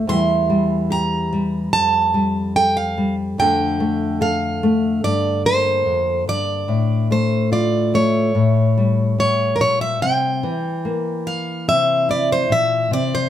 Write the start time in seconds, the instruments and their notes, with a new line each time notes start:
0.07 nylon-string guitar E2 E3 G3 E4 G4, steel-string acoustic guitar C6
0.50 nylon-string guitar G3
0.90 nylon-string guitar G4, steel-string acoustic guitar A#5
1.33 nylon-string guitar G3
1.73 nylon-string guitar F2, steel-string acoustic guitar A5
2.14 nylon-string guitar G3
2.56 nylon-string guitar A4, steel-string acoustic guitar G5
2.77 steel-string acoustic guitar F5
2.98 nylon-string guitar G3
3.38 nylon-string guitar F2 D3 A3 D4 A4, steel-string acoustic guitar G5
3.80 nylon-string guitar A3
4.21 nylon-string guitar A4, steel-string acoustic guitar F5
4.63 nylon-string guitar A3
5.04 nylon-string guitar G2, steel-string acoustic guitar D5
5.45 nylon-string guitar A#3, steel-string acoustic guitar C5
5.86 nylon-string guitar F2
6.27 nylon-string guitar G2, steel-string acoustic guitar D5
6.68 nylon-string guitar A2
7.11 nylon-string guitar A3, steel-string acoustic guitar C5
7.52 nylon-string guitar F4, steel-string acoustic guitar D5
7.94 nylon-string guitar A3, steel-string acoustic guitar C#5
8.35 nylon-string guitar A2
8.77 nylon-string guitar G3
9.18 nylon-string guitar A2, steel-string acoustic guitar C#5
9.56 nylon-string guitar A#2, steel-string acoustic guitar A#4
9.61 steel-string acoustic guitar C#5
9.81 steel-string acoustic guitar E5
10.02 nylon-string guitar C3, steel-string acoustic guitar G5
10.43 nylon-string guitar E3
10.85 nylon-string guitar A#3
11.27 steel-string acoustic guitar F5
11.68 nylon-string guitar C3, steel-string acoustic guitar E5
12.09 nylon-string guitar E4, steel-string acoustic guitar D5
12.32 steel-string acoustic guitar C5
12.49 nylon-string guitar A#2, steel-string acoustic guitar E5
12.91 nylon-string guitar C3, steel-string acoustic guitar D5
13.15 steel-string acoustic guitar C5